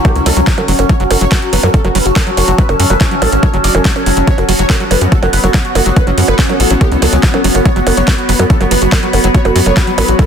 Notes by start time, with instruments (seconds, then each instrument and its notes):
Already playing: synth drone F#3 C#4, wobble bass E4, ambient pad F#4 C#5 F#5, downlifter
0.05 acid bass F#3, analog synth lead G4, kick, closed hi-hat, percussion blips
0.16 analog synth bass C#2, analog synth lead C#4, closed hi-hat
0.26 analog synth bass C#2, acid bass F#3, analog synth lead A4, open hi-hat, percussion blips
0.37 analog synth bass C#2, acid bass F#3, analog synth lead C#4, closed hi-hat
0.47 kick, clap, closed hi-hat
0.58 acid bass F#3, analog synth lead C#4, closed hi-hat, percussion blips
0.68 analog synth bass F#1, acid bass F#3, analog synth lead C#4, open hi-hat
0.79 analog synth bass F#1, analog synth lead C#4, closed hi-hat, percussion blips
0.89 acid bass F#3, analog synth lead C#5, kick, closed hi-hat
1.00 analog synth bass F#1, acid bass F#3, analog synth lead F#4, closed hi-hat
1.11 analog synth bass F#1, analog synth lead F#4, open hi-hat, percussion blips
1.20 analog synth bass F#1, acid bass F#3, analog synth lead C#5, ambient pad A5, closed hi-hat
1.32 acid bass F#3, analog synth lead F#4, kick, clap, closed hi-hat, percussion blips
1.42 analog synth lead F#4, closed hi-hat
1.53 analog synth bass F#1, acid bass F#3, wobble bass B3, analog synth lead B4, open hi-hat
1.63 analog synth bass F#2, acid bass F#3, wobble bass B3, analog synth lead F#4, closed hi-hat, percussion blips
1.74 analog synth lead A4, kick, closed hi-hat
1.85 analog synth bass F#1, acid bass F#3, analog synth lead F#4, closed hi-hat, percussion blips
1.95 analog synth bass F#1, acid bass F#3, wobble bass F#3, analog synth lead B4, open hi-hat
2.06 analog synth bass F#1, analog synth lead F#4, closed hi-hat
2.16 acid bass F#3, kick, clap, closed hi-hat, percussion blips
2.27 acid bass F#3, analog synth lead F#4, closed hi-hat
2.37 analog synth bass F#1, analog synth lead F#4, open hi-hat, percussion blips
2.48 analog synth bass F#1, acid bass F#3, analog synth lead F#4, closed hi-hat
2.58 acid bass F#3, analog synth lead B4, kick, closed hi-hat
2.69 analog synth bass F#1, analog synth lead C#4, closed hi-hat, percussion blips
2.80 analog synth bass F#2, acid bass F#3, analog synth lead C#4, open hi-hat
2.90 analog synth bass F#1, acid bass F#3, analog synth lead B4, closed hi-hat, percussion blips
3.01 wobble bass E3, analog synth lead C#4, kick, clap, closed hi-hat
3.11 acid bass F#3, analog synth lead C#4, closed hi-hat
3.22 analog synth bass A1, acid bass F#3, analog synth lead A4, open hi-hat, percussion blips
3.32 analog synth bass A1, analog synth lead C#4, closed hi-hat
3.43 acid bass F#3, analog synth lead C#5, kick, closed hi-hat, percussion blips
3.54 analog synth bass F#1, acid bass F#3, analog synth lead C#4, closed hi-hat
3.64 analog synth bass F#1, analog synth lead D5, open hi-hat
3.75 analog synth bass F#1, acid bass E3, analog synth lead C#4, closed hi-hat, percussion blips
3.85 acid bass F#3, kick, clap, closed hi-hat
3.96 analog synth lead C#4, closed hi-hat, percussion blips
4.06 analog synth bass F#1, acid bass F#3, analog synth lead C#4, open hi-hat
4.17 analog synth bass F#1, acid bass F#3, analog synth lead C#4, closed hi-hat
4.27 acid bass F#3, synth drone B3, analog synth lead C#5, kick, closed hi-hat
4.38 analog synth bass F#1, analog synth lead F#4, closed hi-hat, percussion blips
4.49 analog synth bass F#1, acid bass F#3, analog synth lead F#4, open hi-hat
4.58 analog synth bass F#1, acid bass F#3, analog synth lead C#5, ambient pad F#5, closed hi-hat
4.70 analog synth lead F#4, kick, clap, closed hi-hat, percussion blips
4.80 acid bass F#3, analog synth lead F#4, closed hi-hat
4.91 analog synth bass F#1, acid bass F#3, wobble bass B3, analog synth lead B4, open hi-hat, percussion blips
5.01 analog synth bass F#2, wobble bass B3, analog synth lead F#4, closed hi-hat
5.12 acid bass F#3, analog synth lead A4, kick, closed hi-hat
5.23 analog synth bass F#1, acid bass F#3, analog synth lead F#4, closed hi-hat, percussion blips
5.33 analog synth bass F#1, analog synth lead B4, open hi-hat
5.44 analog synth bass F#1, acid bass F#3, analog synth lead F#4, closed hi-hat, percussion blips
5.54 acid bass F#3, kick, clap, closed hi-hat
5.65 analog synth lead F#4, closed hi-hat
5.75 analog synth bass F#1, acid bass F#3, analog synth lead F#4, open hi-hat, percussion blips
5.86 analog synth bass F#1, acid bass F#3, analog synth lead F#4, closed hi-hat
5.96 analog synth lead B4, kick, closed hi-hat, percussion blips
6.07 analog synth bass F#1, acid bass F#3, wobble bass B3, analog synth lead C#4, closed hi-hat
6.18 analog synth bass F#2, acid bass F#3, wobble bass B3, analog synth lead C#4, open hi-hat
6.28 analog synth bass F#1, analog synth lead B4, closed hi-hat, percussion blips
6.39 acid bass F#3, analog synth lead C#4, kick, clap, closed hi-hat
6.49 acid bass F#3, analog synth lead C#4, closed hi-hat, percussion blips
6.60 analog synth bass A1, wobble bass E4, analog synth lead A4, open hi-hat
6.70 analog synth bass A1, acid bass F#3, analog synth lead C#4, closed hi-hat
6.81 acid bass F#3, analog synth lead G4, kick, closed hi-hat, percussion blips
6.92 analog synth bass C#2, analog synth lead C#4, closed hi-hat
7.02 analog synth bass C#2, acid bass F#3, analog synth lead A4, open hi-hat, percussion blips
7.13 analog synth bass C#2, acid bass F#3, analog synth lead C#4, closed hi-hat
7.23 kick, clap, closed hi-hat
7.34 acid bass F#3, analog synth lead C#4, closed hi-hat, percussion blips
7.44 analog synth bass F#1, acid bass F#3, analog synth lead C#4, open hi-hat
7.55 analog synth bass F#1, analog synth lead C#4, closed hi-hat, percussion blips
7.66 acid bass F#3, analog synth lead C#5, kick, closed hi-hat
7.76 analog synth bass F#1, acid bass F#3, analog synth lead F#4, closed hi-hat
7.87 analog synth bass F#1, analog synth lead F#4, open hi-hat, percussion blips
7.96 analog synth bass F#1, acid bass F#3, analog synth lead C#5, ambient pad B5, closed hi-hat
8.08 acid bass F#3, analog synth lead F#4, kick, clap, closed hi-hat, percussion blips
8.18 analog synth lead F#4, closed hi-hat
8.29 analog synth bass F#1, acid bass F#3, wobble bass B3, analog synth lead B4, open hi-hat
8.39 analog synth bass F#2, acid bass F#3, wobble bass B3, analog synth lead F#4, closed hi-hat, percussion blips
8.50 analog synth lead A4, kick, closed hi-hat
8.61 analog synth bass F#1, acid bass F#3, analog synth lead F#4, closed hi-hat, percussion blips
8.71 analog synth bass F#1, acid bass F#3, wobble bass F#3, analog synth lead B4, open hi-hat
8.82 analog synth bass F#1, analog synth lead F#4, closed hi-hat
8.92 acid bass F#3, kick, clap, closed hi-hat, percussion blips
9.03 acid bass F#3, analog synth lead F#4, closed hi-hat
9.13 analog synth bass F#1, analog synth lead F#4, open hi-hat, percussion blips
9.24 analog synth bass F#1, acid bass F#3, analog synth lead F#4, closed hi-hat
9.35 acid bass F#3, analog synth lead C#5, kick, closed hi-hat
9.45 analog synth bass F#1, analog synth lead F#4, closed hi-hat, percussion blips
9.56 analog synth bass F#2, acid bass F#3, analog synth lead F#4, open hi-hat
9.66 analog synth bass F#1, acid bass F#3, analog synth lead C#5, closed hi-hat, percussion blips
9.77 wobble bass E3, analog synth lead F#4, kick, clap, closed hi-hat
9.87 acid bass F#3, analog synth lead F#4, closed hi-hat
9.98 analog synth bass A1, acid bass F#3, analog synth lead B4, open hi-hat, percussion blips
10.08 analog synth bass A1, analog synth lead F#4, closed hi-hat
10.19 acid bass F#3, analog synth lead A4, kick, closed hi-hat, percussion blips